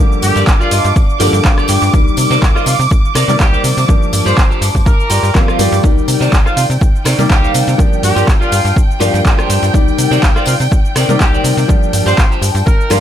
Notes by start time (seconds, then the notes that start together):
Already playing: F3 D6
0.00 G1 D3 G3 A#3
0.12 shaker
0.22 G2 G4, open hi-hat, tambourine, shaker
0.35 G2 F4 G4 A#4 D5, tambourine, shaker
0.47 G1, kick, clap, tambourine, shaker
0.59 F4 G4 A#4 D5, shaker
0.71 G2 D#5, open hi-hat, tambourine, shaker
0.84 G2, tambourine, shaker
0.95 G1 D5, muted clean electric guitar stroke, kick, tambourine, shaker
1.10 shaker
1.19 G2 D3 F3 G3 A#3 F4 G4 A#4 D5, open hi-hat, tambourine, shaker
1.33 G2, tambourine, shaker
1.44 G1 F5, kick, clap, tambourine, shaker
1.57 F4 G4 A#4 D5, cross-stick, shaker
1.68 G2 G5, open hi-hat, tambourine, shaker
1.81 G2, tambourine, shaker
1.93 C2 D#3 G3 A#3, kick, tambourine, shaker
2.08 shaker
2.17 C3, open hi-hat, tambourine, shaker
2.30 C3 D#4 A#4 C5 D5, tambourine, shaker
2.42 C2, kick, clap, tambourine, shaker
2.55 D#4 F4 A#4 C5 D#5, cross-stick, shaker
2.66 C3 F4, open hi-hat, tambourine, shaker
2.79 C3, tambourine, shaker
2.90 C2, kick, tambourine, shaker
3.05 shaker
3.15 C3 D#4 A#4 C5 D5, cross-stick, open hi-hat, tambourine, shaker
3.28 C3 D#3 G3 A#3 D5, tambourine, shaker
3.40 C2 G4, kick, clap, tambourine, shaker
3.52 D#4 A#4 C5 D5, shaker
3.64 C3, open hi-hat, tambourine, shaker
3.77 C3, tambourine, shaker
3.88 G1 F3 G3 A#3 D4, kick, tambourine, shaker
4.03 shaker
4.13 G2, open hi-hat, tambourine, shaker
4.25 G2 F4 G4 A#4 C5 D5, tambourine, shaker
4.37 G1, kick, clap, tambourine, shaker
4.50 F4 G4 A#4 C5, shaker
4.61 G2, open hi-hat, tambourine, shaker
4.75 G2, kick, tambourine, shaker
4.86 G1 A#4, kick, tambourine, shaker
5.00 shaker
5.10 G2 F4 G4 A#4 D5 G5, open hi-hat, tambourine, shaker
5.23 G2, tambourine, shaker
5.35 G1 F3 G3 A#3 C4 F5, kick, clap, tambourine, shaker
5.47 F4 G4 A#4 F5, cross-stick, shaker
5.59 G2 F3 G3 A#3 G4 D5, open hi-hat, tambourine, shaker
5.72 G2, tambourine, shaker
5.83 C2 D#3 A#3 D5 G5, kick, tambourine, shaker
5.98 shaker
6.08 C3, open hi-hat, tambourine, shaker
6.20 C3 D#4 A#4 C5 D5, tambourine, shaker
6.33 C2, kick, clap, tambourine, shaker
6.45 D#4 F4 A#4 C5 F5, cross-stick, shaker
6.56 C3 F4, open hi-hat, tambourine, shaker
6.70 C3, tambourine, shaker
6.81 C2, kick, tambourine, shaker
6.96 shaker
7.05 C3 D#4 A#4 C5 D5, cross-stick, open hi-hat, tambourine, shaker
7.18 C3 D#3 G3 A#3 D5, tambourine, shaker
7.30 C2 G4, kick, clap, tambourine, shaker
7.42 D#4 A#4 C5 F5, shaker
7.54 C3, open hi-hat, tambourine, shaker
7.67 C3, tambourine, shaker
7.78 G1 F3 G3 A#3 D4, kick, tambourine, shaker
7.93 shaker
8.03 G2 G4, open hi-hat, tambourine, shaker
8.15 G2 F4 G4 A#4 D5, tambourine, shaker
8.28 G1, kick, clap, tambourine, shaker
8.40 F4 G4 A#4 D5, shaker
8.52 G2, open hi-hat, tambourine, shaker
8.65 G2, tambourine, shaker
8.76 G1, kick, tambourine, shaker
8.91 shaker
9.00 G2 F3 G3 A#3 D4 F4 G4 A#4 F5 G5, open hi-hat, tambourine, shaker
9.14 G2, tambourine, shaker
9.25 G1 F5, kick, clap, tambourine, shaker
9.37 F4 G4 A#4 C5 D5, cross-stick, shaker
9.49 G2, open hi-hat, tambourine, shaker
9.63 G2, tambourine, shaker
9.73 C2 D#3 G3 A#3 D5, kick, tambourine, shaker
9.88 shaker
9.98 C3, open hi-hat, tambourine, shaker
10.11 C3 D#4 A#4 C5 D5, tambourine, shaker
10.22 C2, kick, clap, tambourine, shaker
10.35 D#4 F4 A#4 C5 D5, cross-stick, shaker
10.46 C3 F4, open hi-hat, tambourine, shaker
10.60 C3, tambourine, shaker
10.71 C2, muted clean electric guitar stroke, kick, tambourine, shaker
10.85 shaker
10.95 C3 D#4 A#4 C5 D5, cross-stick, open hi-hat, tambourine, shaker
11.09 C3 D#3 G3 A#3 D5, tambourine, shaker
11.20 C2 G4, kick, clap, tambourine, shaker
11.33 D#4 A#4 C5 D5, shaker
11.44 C3, open hi-hat, tambourine, shaker
11.57 C3, tambourine, shaker
11.68 G1 F3 G3 A#3 D4, kick, tambourine, shaker
11.83 shaker
11.93 G2, open hi-hat, tambourine, shaker
12.06 G2 F4 G4 A#4 C5 D5, tambourine, shaker
12.18 G1, kick, clap, tambourine, shaker
12.30 F4 G4 A#4 C5, shaker
12.42 G2, open hi-hat, tambourine, shaker
12.55 G2, tambourine, shaker
12.66 G1 A#4, kick, tambourine, shaker
12.81 shaker
12.90 G2 F3 G3 A#3 D4 F4 G4 A#4 F5 G5, cross-stick, open hi-hat, tambourine, shaker